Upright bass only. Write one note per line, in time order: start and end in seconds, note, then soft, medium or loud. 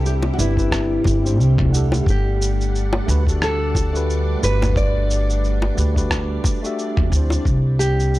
0.00 0.29 C2 medium
0.39 0.97 G1 medium
1.05 1.39 G1 medium
1.39 1.98 C2 medium
2.07 2.99 G1 medium
3.08 4.34 D2 loud
4.43 5.69 G1 medium
5.78 6.36 D2 medium
7.12 7.35 D2 loud
7.46 8.19 C2 medium